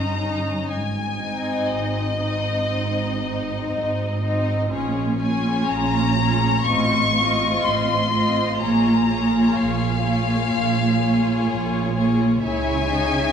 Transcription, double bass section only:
0, 0, Header, 1, 2, 480
1, 0, Start_track
1, 0, Tempo, 1010101
1, 330, Time_signature, 4, 2, 24, 8
1, 1767, Tempo, 988468
1, 2727, Tempo, 972447
1, 4167, Tempo, 955414
1, 6534, End_track
2, 0, Start_track
2, 0, Title_t, "Double bass section"
2, 0, Program_c, 0, 48
2, 0, Note_on_c, 0, 31, 48
2, 272, Note_off_c, 0, 31, 0
2, 332, Note_on_c, 0, 32, 41
2, 747, Note_off_c, 0, 32, 0
2, 803, Note_on_c, 0, 32, 48
2, 1230, Note_off_c, 0, 32, 0
2, 1289, Note_on_c, 0, 32, 42
2, 1713, Note_off_c, 0, 32, 0
2, 1769, Note_on_c, 0, 32, 50
2, 2193, Note_off_c, 0, 32, 0
2, 2247, Note_on_c, 0, 34, 54
2, 2671, Note_off_c, 0, 34, 0
2, 2726, Note_on_c, 0, 34, 59
2, 3148, Note_off_c, 0, 34, 0
2, 3202, Note_on_c, 0, 33, 55
2, 3630, Note_off_c, 0, 33, 0
2, 3686, Note_on_c, 0, 33, 55
2, 4110, Note_off_c, 0, 33, 0
2, 4164, Note_on_c, 0, 34, 58
2, 4590, Note_off_c, 0, 34, 0
2, 4648, Note_on_c, 0, 34, 54
2, 5069, Note_off_c, 0, 34, 0
2, 5125, Note_on_c, 0, 34, 54
2, 5558, Note_off_c, 0, 34, 0
2, 5614, Note_on_c, 0, 34, 60
2, 6032, Note_off_c, 0, 34, 0
2, 6088, Note_on_c, 0, 37, 53
2, 6534, Note_off_c, 0, 37, 0
2, 6534, End_track
0, 0, End_of_file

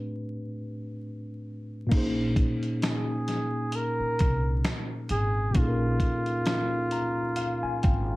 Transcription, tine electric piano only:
0, 0, Header, 1, 2, 480
1, 0, Start_track
1, 0, Tempo, 909091
1, 1008, Time_signature, 4, 2, 24, 8
1, 4310, End_track
2, 0, Start_track
2, 0, Title_t, "Tine electric piano"
2, 0, Program_c, 0, 4
2, 0, Control_c, 0, 64, 127
2, 0, Note_on_c, 0, 45, 77
2, 0, Note_on_c, 0, 57, 64
2, 0, Note_on_c, 0, 60, 64
2, 0, Note_on_c, 0, 62, 63
2, 0, Note_on_c, 0, 67, 61
2, 0, Note_on_c, 0, 71, 75
2, 971, Note_off_c, 0, 45, 0
2, 977, Note_off_c, 0, 57, 0
2, 981, Note_off_c, 0, 60, 0
2, 985, Note_on_c, 0, 46, 75
2, 988, Note_off_c, 0, 62, 0
2, 994, Note_off_c, 0, 67, 0
2, 997, Note_on_c, 0, 58, 80
2, 999, Note_off_c, 0, 71, 0
2, 1007, Note_on_c, 0, 61, 69
2, 1016, Control_c, 0, 64, 0
2, 1018, Note_on_c, 0, 63, 84
2, 1031, Note_on_c, 0, 68, 70
2, 1041, Note_on_c, 0, 72, 88
2, 1100, Control_c, 0, 64, 127
2, 2896, Note_off_c, 0, 46, 0
2, 2902, Note_off_c, 0, 58, 0
2, 2907, Note_off_c, 0, 61, 0
2, 2908, Note_on_c, 0, 46, 68
2, 2912, Note_off_c, 0, 63, 0
2, 2919, Note_off_c, 0, 68, 0
2, 2923, Note_on_c, 0, 58, 62
2, 2924, Note_off_c, 0, 72, 0
2, 2931, Note_on_c, 0, 61, 69
2, 2943, Note_on_c, 0, 63, 59
2, 2955, Note_on_c, 0, 68, 63
2, 2966, Note_on_c, 0, 69, 54
2, 2986, Note_off_c, 0, 69, 0
2, 3000, Note_on_c, 0, 70, 80
2, 3655, Note_on_c, 0, 82, 73
2, 3875, Note_off_c, 0, 82, 0
2, 3890, Note_on_c, 0, 77, 81
2, 4015, Note_off_c, 0, 77, 0
2, 4029, Note_on_c, 0, 80, 73
2, 4124, Note_off_c, 0, 80, 0
2, 4137, Note_on_c, 0, 79, 70
2, 4310, Note_off_c, 0, 46, 0
2, 4310, Note_off_c, 0, 58, 0
2, 4310, Note_off_c, 0, 61, 0
2, 4310, Note_off_c, 0, 63, 0
2, 4310, Note_off_c, 0, 68, 0
2, 4310, Note_off_c, 0, 70, 0
2, 4310, Note_off_c, 0, 79, 0
2, 4310, End_track
0, 0, End_of_file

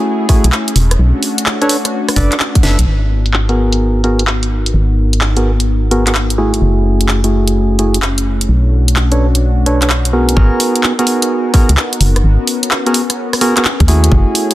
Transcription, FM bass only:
0, 0, Header, 1, 2, 480
1, 0, Start_track
1, 0, Tempo, 468750
1, 1016, Time_signature, 4, 2, 24, 8
1, 14889, End_track
2, 0, Start_track
2, 0, Title_t, "FM bass"
2, 0, Program_c, 0, 39
2, 456, Note_on_c, 0, 35, 93
2, 525, Note_off_c, 0, 35, 0
2, 776, Note_on_c, 0, 28, 96
2, 994, Note_off_c, 0, 28, 0
2, 1017, Note_on_c, 0, 35, 99
2, 1154, Note_off_c, 0, 35, 0
2, 2216, Note_on_c, 0, 30, 94
2, 2353, Note_off_c, 0, 30, 0
2, 2696, Note_on_c, 0, 30, 93
2, 2834, Note_off_c, 0, 30, 0
2, 2856, Note_on_c, 0, 35, 100
2, 2925, Note_off_c, 0, 35, 0
2, 2935, Note_on_c, 0, 32, 88
2, 4839, Note_off_c, 0, 32, 0
2, 4854, Note_on_c, 0, 32, 85
2, 6759, Note_off_c, 0, 32, 0
2, 6775, Note_on_c, 0, 30, 88
2, 8679, Note_off_c, 0, 30, 0
2, 8694, Note_on_c, 0, 35, 88
2, 10598, Note_off_c, 0, 35, 0
2, 10616, Note_on_c, 0, 32, 101
2, 10753, Note_off_c, 0, 32, 0
2, 11974, Note_on_c, 0, 37, 91
2, 12044, Note_off_c, 0, 37, 0
2, 12294, Note_on_c, 0, 30, 98
2, 12513, Note_off_c, 0, 30, 0
2, 12533, Note_on_c, 0, 32, 102
2, 12672, Note_off_c, 0, 32, 0
2, 14134, Note_on_c, 0, 39, 94
2, 14205, Note_off_c, 0, 39, 0
2, 14214, Note_on_c, 0, 39, 93
2, 14433, Note_off_c, 0, 39, 0
2, 14454, Note_on_c, 0, 30, 102
2, 14592, Note_off_c, 0, 30, 0
2, 14889, End_track
0, 0, End_of_file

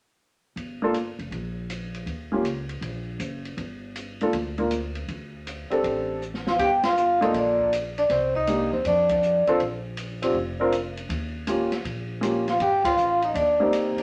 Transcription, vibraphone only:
0, 0, Header, 1, 2, 480
1, 0, Start_track
1, 0, Key_signature, -2, "minor"
1, 0, Tempo, 376176
1, 711, Time_signature, 4, 2, 24, 8
1, 17900, End_track
2, 0, Start_track
2, 0, Title_t, "Vibraphone"
2, 0, Program_c, 0, 11
2, 8297, Note_on_c, 0, 77, 71
2, 8359, Note_off_c, 0, 77, 0
2, 8453, Note_on_c, 0, 79, 83
2, 8585, Note_off_c, 0, 79, 0
2, 8769, Note_on_c, 0, 77, 83
2, 9239, Note_on_c, 0, 75, 62
2, 9240, Note_off_c, 0, 77, 0
2, 9388, Note_off_c, 0, 75, 0
2, 9412, Note_on_c, 0, 74, 74
2, 9837, Note_off_c, 0, 74, 0
2, 10188, Note_on_c, 0, 74, 73
2, 10255, Note_off_c, 0, 74, 0
2, 10344, Note_on_c, 0, 72, 71
2, 10658, Note_on_c, 0, 75, 73
2, 10660, Note_off_c, 0, 72, 0
2, 11142, Note_off_c, 0, 75, 0
2, 11144, Note_on_c, 0, 72, 62
2, 11298, Note_on_c, 0, 74, 70
2, 11299, Note_off_c, 0, 72, 0
2, 11602, Note_off_c, 0, 74, 0
2, 11617, Note_on_c, 0, 74, 62
2, 12054, Note_off_c, 0, 74, 0
2, 15934, Note_on_c, 0, 77, 62
2, 16073, Note_off_c, 0, 77, 0
2, 16101, Note_on_c, 0, 79, 72
2, 16411, Note_off_c, 0, 79, 0
2, 16423, Note_on_c, 0, 77, 69
2, 16898, Note_off_c, 0, 77, 0
2, 16902, Note_on_c, 0, 75, 64
2, 17051, Note_off_c, 0, 75, 0
2, 17078, Note_on_c, 0, 74, 67
2, 17501, Note_off_c, 0, 74, 0
2, 17900, End_track
0, 0, End_of_file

